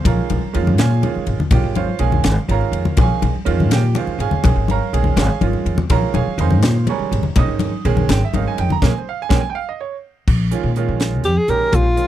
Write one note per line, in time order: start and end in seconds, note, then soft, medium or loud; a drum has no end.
0.03 0.17 A#1 loud
0.03 0.39 D#3 medium
0.03 0.39 G#3 medium
0.03 0.39 C#4 medium
0.03 0.40 F4 medium
0.03 0.75 A#5 medium
0.03 kick loud
0.03 ride medium
0.03 muted conga medium
0.03 low conga soft
0.08 0.76 A#4 medium
0.08 0.76 C#5 medium
0.08 0.76 F5 medium
0.30 0.41 A#1 medium
0.30 ride medium
0.30 high conga medium
0.30 low conga soft
0.43 muted upright bass stroke soft
0.53 0.80 F2 loud
0.53 0.88 D#3 medium
0.53 0.88 G#3 medium
0.53 0.88 C#4 medium
0.53 0.89 F4 medium
0.53 ride medium
0.67 high conga medium
0.67 low conga medium
0.78 1.02 A#2 loud
0.78 1.25 G#4 medium
0.78 1.25 C#5 medium
0.78 1.25 F5 medium
0.78 1.24 G#5 loud
0.78 snare loud
0.78 ride medium
0.78 muted conga medium
1.02 1.37 D#3 medium
1.02 1.37 G#3 medium
1.02 1.37 C#4 medium
1.02 1.37 F4 medium
1.02 ride medium
1.02 high conga medium
1.15 muted upright bass stroke soft
1.15 low conga soft
1.27 1.38 G#1 medium
1.27 ride medium
1.39 muted upright bass stroke soft
1.39 high conga medium
1.39 low conga medium
1.51 1.62 A#1 loud
1.51 1.86 D#3 medium
1.51 1.86 G#3 medium
1.51 1.86 C#4 medium
1.51 1.75 F4 medium
1.51 1.76 G4 medium
1.51 1.76 G5 medium
1.51 kick loud
1.51 ride medium
1.51 muted conga medium
1.51 low conga soft
1.63 1.86 G#1 medium
1.75 2.00 F4 medium
1.75 2.00 C5 medium
1.75 2.00 C#5 medium
1.75 2.00 F5 medium
1.75 ride medium
1.75 high conga medium
1.75 low conga soft
1.99 2.23 A#1 medium
1.99 2.34 D#3 medium
1.99 2.34 G#3 medium
1.99 2.35 C#4 medium
1.99 2.34 G#4 medium
1.99 2.47 C#5 medium
1.99 2.47 F5 medium
1.99 2.46 G#5 medium
1.99 ride medium
2.12 high conga medium
2.12 low conga medium
2.24 2.36 G#1 loud
2.24 snare loud
2.24 ride medium
2.24 muted conga loud
2.48 2.60 G#1 loud
2.48 2.83 D#3 medium
2.48 2.83 G#3 medium
2.48 2.83 C#4 medium
2.48 2.83 F4 medium
2.48 2.96 A#4 medium
2.48 2.96 C#5 medium
2.48 2.96 F5 medium
2.48 2.96 A#5 medium
2.48 ride medium
2.61 low conga soft
2.72 2.84 F2 medium
2.72 ride medium
2.84 muted upright bass stroke soft
2.84 high conga medium
2.84 low conga medium
2.96 3.09 A#1 loud
2.96 3.31 D#3 medium
2.96 3.32 G#3 medium
2.96 3.32 C#4 medium
2.96 3.33 G#4 medium
2.96 kick loud
2.96 ride medium
2.96 muted conga loud
3.01 3.23 C#5 medium
3.01 3.24 F5 medium
3.01 3.23 G#5 medium
3.22 3.33 A#1 medium
3.22 ride medium
3.22 high conga medium
3.22 low conga soft
3.35 muted upright bass stroke soft
3.45 3.70 F2 loud
3.45 3.80 D#3 loud
3.45 3.80 G#3 medium
3.45 3.80 C#4 medium
3.45 3.80 F4 loud
3.45 ride medium
3.60 high conga medium
3.60 low conga medium
3.70 3.93 A#2 loud
3.70 3.96 G4 medium
3.70 3.96 G5 loud
3.70 snare loud
3.70 ride medium
3.70 muted conga loud
3.84 low conga soft
3.95 4.29 D#3 medium
3.95 4.29 G#3 medium
3.95 4.30 C#4 medium
3.95 4.30 F4 medium
3.95 4.21 C5 medium
3.95 4.20 C#5 medium
3.95 4.19 F5 medium
3.95 ride medium
3.95 high conga medium
4.07 muted upright bass stroke soft
4.07 low conga soft
4.19 4.30 G#1 medium
4.19 4.42 G#4 medium
4.19 4.66 C#5 medium
4.19 4.66 F5 medium
4.19 4.66 G#5 medium
4.19 ride medium
4.31 muted upright bass stroke soft
4.31 high conga medium
4.31 low conga medium
4.42 4.55 A#1 loud
4.42 4.77 D#3 medium
4.42 4.78 G#3 medium
4.42 4.78 C#4 medium
4.42 4.78 G#4 medium
4.42 kick loud
4.42 ride medium
4.42 muted conga medium
4.42 low conga soft
4.56 4.78 G#1 medium
4.68 5.16 A#4 medium
4.68 5.16 C#5 medium
4.68 5.15 F5 medium
4.68 5.15 A#5 loud
4.68 ride medium
4.68 high conga medium
4.68 low conga soft
4.93 5.15 A#1 medium
4.93 5.27 D#3 medium
4.93 5.27 G#3 medium
4.93 5.28 C#4 medium
4.93 5.18 G#4 medium
4.93 ride medium
5.04 high conga medium
5.04 low conga medium
5.16 5.28 G#1 loud
5.16 5.42 G#4 medium
5.16 5.42 C#5 medium
5.16 5.42 F5 medium
5.16 5.41 G#5 medium
5.16 snare loud
5.16 ride medium
5.16 muted conga loud
5.41 5.53 G#1 medium
5.41 5.76 D#3 medium
5.41 5.76 G#3 medium
5.41 5.76 C#4 medium
5.41 5.76 F4 medium
5.41 ride medium
5.41 high conga loud
5.53 low conga soft
5.66 5.77 F2 medium
5.66 ride medium
5.78 muted upright bass stroke soft
5.78 high conga medium
5.78 low conga medium
5.90 6.01 A#1 loud
5.90 6.24 D#3 medium
5.90 6.24 G#3 medium
5.90 6.24 C#4 medium
5.90 6.25 F4 medium
5.90 6.15 A#4 medium
5.90 6.14 C#5 medium
5.90 6.14 F5 medium
5.90 6.15 A#5 loud
5.90 kick loud
5.90 ride medium
5.90 muted conga medium
5.90 low conga soft
6.14 6.26 A#1 medium
6.14 6.39 G#4 medium
6.14 6.39 C#5 medium
6.14 6.39 F5 medium
6.14 6.38 G#5 medium
6.14 ride medium
6.14 high conga loud
6.14 low conga soft
6.27 muted upright bass stroke soft
6.38 6.62 F2 loud
6.38 6.72 D#3 medium
6.38 6.73 G#3 medium
6.38 6.73 C#4 medium
6.38 6.73 D#4 medium
6.38 6.86 C5 medium
6.38 6.85 F5 medium
6.38 6.85 G#5 medium
6.38 6.85 C6 medium
6.38 ride medium
6.50 high conga medium
6.50 low conga medium
6.62 6.85 A#2 loud
6.62 snare loud
6.62 ride medium
6.62 muted conga loud
6.87 7.22 D#3 medium
6.87 7.23 G3 medium
6.87 7.22 G#3 medium
6.87 7.22 C#4 medium
6.87 7.34 C#5 medium
6.87 7.34 G#5 medium
6.87 7.34 A#5 medium
6.87 7.34 C#6 medium
6.87 ride medium
6.87 high conga loud
6.99 muted upright bass stroke soft
6.99 low conga soft
7.12 7.23 G#1 medium
7.12 ride medium
7.23 muted upright bass stroke soft
7.23 high conga medium
7.23 low conga medium
7.36 7.48 A#1 loud
7.36 7.71 D#3 medium
7.36 7.71 G#3 medium
7.36 7.71 C#4 medium
7.36 7.71 D#4 medium
7.36 7.53 D#5 medium
7.36 7.53 D#6 loud
7.36 kick loud
7.36 ride medium
7.36 muted conga medium
7.36 low conga soft
7.48 7.71 G#1 medium
7.59 ride medium
7.59 high conga loud
7.59 low conga soft
7.85 8.07 A#1 loud
7.85 8.19 D#3 loud
7.85 8.19 G#3 medium
7.85 8.20 C#4 medium
7.85 8.19 G#4 loud
7.85 ride medium
7.97 high conga medium
7.97 low conga medium
8.09 8.20 G#1 loud
8.09 8.21 G5 loud
8.09 snare loud
8.09 ride medium
8.09 muted conga loud
8.25 8.35 E5 medium
8.33 8.44 G#1 medium
8.33 8.67 D#3 medium
8.33 8.68 G#3 medium
8.33 8.68 C#4 medium
8.33 8.68 D#4 medium
8.33 8.46 F5 medium
8.33 ride medium
8.33 high conga medium
8.48 8.58 G#5 medium
8.58 8.69 F2 medium
8.58 8.70 G5 medium
8.58 ride medium
8.70 8.83 A#5 loud
8.70 muted upright bass stroke soft
8.70 high conga medium
8.70 low conga medium
8.82 8.91 A#1 loud
8.82 8.90 G#3 loud
8.82 8.90 A#3 loud
8.82 8.90 C#4 loud
8.82 8.96 G#5 medium
8.82 kick medium
8.82 snare medium
8.82 muted conga loud
8.98 9.08 C5 medium
9.09 9.19 F5 medium
9.22 9.32 G#5 loud
9.29 9.40 A#1 medium
9.29 9.38 G#3 loud
9.29 9.38 A#3 medium
9.29 9.38 C#4 loud
9.29 kick loud
9.29 snare loud
9.29 muted conga loud
9.33 9.40 G5 medium
9.41 9.48 G#5 loud
9.50 9.56 G5 medium
9.55 9.67 F5 loud
9.69 9.80 D#5 medium
9.81 9.95 C#5 medium
10.28 10.50 A#1 loud
10.28 kick loud
10.28 crash medium
10.51 10.69 D#3 medium
10.51 10.69 G#3 medium
10.51 10.69 C#4 medium
10.51 10.69 F4 medium
10.51 closed hi-hat medium
10.63 10.86 A#2 medium
10.76 11.27 D#3 medium
10.76 11.28 G#3 medium
10.76 11.28 C#4 medium
10.76 11.28 F4 medium
10.76 closed hi-hat medium
10.88 11.24 A#1 medium
11.00 snare medium
11.00 closed hi-hat medium
11.24 11.36 F2 medium
11.24 11.40 G4 medium
11.24 closed hi-hat medium
11.38 11.51 G#4 medium
11.48 11.60 A#1 medium
11.48 11.83 D#3 medium
11.48 11.83 G#3 medium
11.48 11.84 C#4 medium
11.48 11.84 G4 medium
11.48 11.77 A#4 medium
11.48 closed hi-hat medium
11.72 11.95 A#1 loud
11.72 12.07 F4 medium
11.72 kick loud
11.72 closed hi-hat medium
11.96 12.07 D#3 medium
11.96 12.07 G#3 medium
11.96 12.07 C#4 medium
11.96 12.07 F4 medium
11.96 closed hi-hat medium